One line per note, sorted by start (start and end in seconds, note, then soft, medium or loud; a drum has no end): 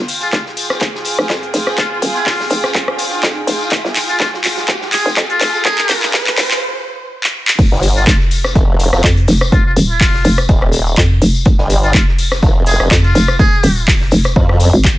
0.00 0.31 G1 medium
0.00 6.62 F4 medium
0.00 6.62 G5 medium
0.00 riser medium
0.08 closed hi-hat medium
0.08 open hi-hat loud
0.08 tambourine medium
0.20 0.29 F4 medium
0.20 6.62 G#4 medium
0.20 closed hi-hat soft
0.20 tambourine soft
0.33 0.79 F1 loud
0.33 0.41 F4 medium
0.33 kick loud
0.33 snare loud
0.33 clap soft
0.33 closed hi-hat medium
0.46 snare soft
0.57 closed hi-hat medium
0.57 open hi-hat medium
0.57 tambourine medium
0.70 cross-stick medium
0.70 snare medium
0.70 tambourine soft
0.81 1.16 F1 medium
0.81 kick loud
0.81 clap medium
0.81 closed hi-hat medium
0.81 tambourine soft
0.95 snare soft
1.05 closed hi-hat medium
1.05 open hi-hat loud
1.05 tambourine medium
1.19 1.28 F1 medium
1.19 cross-stick medium
1.19 tambourine soft
1.29 1.52 F2 loud
1.29 kick loud
1.29 snare loud
1.29 clap medium
1.29 closed hi-hat medium
1.29 tambourine soft
1.43 closed hi-hat soft
1.54 1.76 F1 loud
1.54 snare soft
1.54 closed hi-hat medium
1.54 open hi-hat medium
1.54 tambourine medium
1.67 cross-stick medium
1.67 tambourine medium
1.77 2.00 F1 medium
1.77 1.86 F4 medium
1.77 kick loud
1.77 clap medium
1.77 closed hi-hat medium
1.77 tambourine soft
1.91 1.98 F4 medium
2.02 2.49 D#1 loud
2.02 closed hi-hat medium
2.02 open hi-hat loud
2.02 tambourine medium
2.15 2.64 F4 medium
2.15 tambourine medium
2.26 kick loud
2.26 snare loud
2.26 clap medium
2.26 open hi-hat medium
2.26 tambourine soft
2.40 snare medium
2.50 2.73 F1 loud
2.50 closed hi-hat medium
2.50 open hi-hat medium
2.50 tambourine medium
2.63 cross-stick medium
2.63 closed hi-hat soft
2.63 tambourine medium
2.75 3.21 D#1 medium
2.75 kick loud
2.75 clap medium
2.75 closed hi-hat medium
2.88 cross-stick medium
2.98 closed hi-hat medium
2.98 open hi-hat loud
2.98 tambourine medium
3.12 tambourine medium
3.22 3.46 F2 loud
3.22 kick loud
3.22 snare loud
3.22 clap medium
3.22 closed hi-hat medium
3.22 tambourine soft
3.47 3.70 F1 loud
3.47 closed hi-hat medium
3.47 open hi-hat medium
3.47 tambourine medium
3.61 tambourine medium
3.71 3.83 F1 loud
3.71 kick loud
3.71 clap medium
3.71 closed hi-hat medium
3.71 tambourine soft
3.85 4.18 G1 medium
3.85 snare medium
3.96 clap medium
3.96 closed hi-hat medium
3.96 open hi-hat loud
3.96 tambourine loud
4.09 4.16 F4 medium
4.09 closed hi-hat soft
4.09 tambourine medium
4.20 4.67 F1 loud
4.20 4.28 F4 medium
4.20 kick loud
4.20 snare loud
4.20 clap medium
4.20 closed hi-hat medium
4.20 tambourine soft
4.34 snare soft
4.44 clap medium
4.44 closed hi-hat medium
4.44 open hi-hat medium
4.44 tambourine loud
4.57 snare soft
4.57 tambourine medium
4.68 5.04 F1 loud
4.68 kick loud
4.68 clap medium
4.68 closed hi-hat medium
4.68 tambourine soft
4.82 snare soft
4.92 5.10 G#4 medium
4.92 clap medium
4.92 closed hi-hat medium
4.92 open hi-hat loud
4.92 tambourine medium
5.06 5.15 F1 loud
5.06 tambourine medium
5.17 5.39 F2 loud
5.17 kick loud
5.17 snare loud
5.17 clap medium
5.17 closed hi-hat medium
5.17 tambourine soft
5.30 5.63 F4 loud
5.30 closed hi-hat soft
5.41 5.63 F1 loud
5.41 snare soft
5.41 clap medium
5.41 closed hi-hat medium
5.41 open hi-hat medium
5.41 tambourine medium
5.54 tambourine medium
5.65 5.88 F1 medium
5.65 6.13 G#4 loud
5.65 kick loud
5.65 clap medium
5.65 closed hi-hat medium
5.65 tambourine soft
5.78 clap medium
5.89 6.36 D#1 medium
5.89 clap loud
5.89 closed hi-hat medium
5.89 open hi-hat loud
5.89 tambourine loud
6.02 clap medium
6.02 tambourine medium
6.13 kick loud
6.13 snare loud
6.13 clap medium
6.13 open hi-hat medium
6.13 tambourine soft
6.26 snare medium
6.26 clap medium
6.38 6.60 F1 medium
6.38 clap medium
6.38 closed hi-hat medium
6.38 open hi-hat medium
6.38 tambourine loud
6.51 clap medium
6.51 closed hi-hat soft
6.51 tambourine medium
7.24 clap medium
7.48 clap loud
7.59 7.70 F1 medium
7.59 kick loud
7.59 closed hi-hat medium
7.59 crash loud
7.59 tambourine soft
7.72 8.05 G1 loud
7.72 snare soft
7.82 closed hi-hat medium
7.82 open hi-hat loud
7.82 tambourine loud
7.95 8.03 F4 medium
7.95 closed hi-hat soft
7.95 tambourine medium
8.07 8.54 F1 loud
8.07 8.16 F4 medium
8.07 kick loud
8.07 snare loud
8.07 clap loud
8.07 closed hi-hat medium
8.20 snare soft
8.31 closed hi-hat medium
8.31 open hi-hat medium
8.31 tambourine medium
8.44 cross-stick medium
8.44 snare medium
8.44 tambourine medium
8.55 8.91 F1 medium
8.55 kick loud
8.55 closed hi-hat medium
8.79 closed hi-hat medium
8.79 open hi-hat loud
8.79 tambourine medium
8.93 9.02 F1 loud
8.93 cross-stick medium
8.93 tambourine medium
9.04 9.26 F2 loud
9.04 kick loud
9.04 snare loud
9.04 clap loud
9.04 closed hi-hat medium
9.04 tambourine soft
9.17 closed hi-hat soft
9.28 9.51 F1 medium
9.28 snare soft
9.28 closed hi-hat medium
9.28 open hi-hat medium
9.28 tambourine medium
9.41 cross-stick medium
9.41 tambourine medium
9.52 9.75 F1 loud
9.52 9.61 F4 medium
9.52 kick loud
9.52 closed hi-hat medium
9.52 tambourine soft
9.66 9.73 F4 medium
9.76 10.23 D#1 loud
9.76 closed hi-hat medium
9.76 open hi-hat loud
9.76 tambourine loud
9.90 10.38 F4 medium
9.90 tambourine medium
10.01 kick loud
10.01 snare loud
10.01 clap loud
10.01 open hi-hat medium
10.14 snare medium
10.24 10.47 F1 loud
10.24 closed hi-hat medium
10.24 open hi-hat medium
10.24 tambourine loud
10.38 cross-stick medium
10.38 closed hi-hat soft
10.38 tambourine medium
10.49 10.96 D#1 loud
10.49 kick loud
10.49 closed hi-hat medium
10.49 tambourine soft
10.62 cross-stick medium
10.72 closed hi-hat medium
10.72 open hi-hat loud
10.72 tambourine loud
10.86 tambourine medium
10.97 11.20 F2 loud
10.97 kick loud
10.97 snare loud
10.97 clap loud
10.97 closed hi-hat loud
11.22 11.44 F1 medium
11.22 closed hi-hat medium
11.22 open hi-hat loud
11.22 tambourine medium
11.35 tambourine medium
11.45 11.57 F1 medium
11.45 kick loud
11.45 closed hi-hat medium
11.58 11.92 G1 medium
11.58 snare medium
11.70 closed hi-hat medium
11.70 open hi-hat loud
11.70 tambourine loud
11.83 11.90 F4 medium
11.83 closed hi-hat soft
11.83 tambourine soft
11.94 12.41 F1 loud
11.94 12.03 F4 medium
11.94 kick loud
11.94 snare loud
11.94 clap loud
11.94 closed hi-hat medium
12.08 snare soft
12.18 closed hi-hat medium
12.18 open hi-hat loud
12.18 tambourine medium
12.31 cross-stick medium
12.31 snare soft
12.31 tambourine medium
12.42 12.78 F1 loud
12.42 kick loud
12.42 closed hi-hat medium
12.42 tambourine soft
12.66 12.84 G#4 medium
12.66 closed hi-hat medium
12.66 open hi-hat loud
12.66 tambourine medium
12.80 12.89 F1 medium
12.80 cross-stick medium
12.80 tambourine medium
12.91 13.13 F2 loud
12.91 kick loud
12.91 snare loud
12.91 clap loud
12.91 closed hi-hat medium
12.91 tambourine soft
13.04 13.37 F4 loud
13.04 closed hi-hat soft
13.15 13.38 F1 loud
13.15 snare soft
13.15 closed hi-hat medium
13.15 open hi-hat loud
13.15 tambourine loud
13.28 cross-stick medium
13.28 tambourine medium
13.39 13.62 F1 loud
13.39 13.88 G#4 loud
13.39 kick loud
13.39 closed hi-hat medium
13.39 tambourine soft
13.63 14.10 D#1 loud
13.63 closed hi-hat medium
13.63 open hi-hat loud
13.63 tambourine loud
13.76 tambourine medium
13.88 kick loud
13.88 snare loud
13.88 clap loud
13.88 open hi-hat medium
14.01 snare medium
14.11 14.34 F1 loud
14.11 closed hi-hat medium
14.11 open hi-hat medium
14.11 tambourine loud
14.24 cross-stick medium
14.24 closed hi-hat soft
14.24 tambourine medium
14.36 14.71 F2 medium
14.36 kick loud
14.49 cross-stick medium
14.60 closed hi-hat medium
14.60 open hi-hat loud
14.60 tambourine loud
14.73 14.96 G#1 loud
14.73 tambourine medium
14.84 kick loud
14.84 snare loud
14.84 clap loud
14.84 closed hi-hat medium
14.84 tambourine soft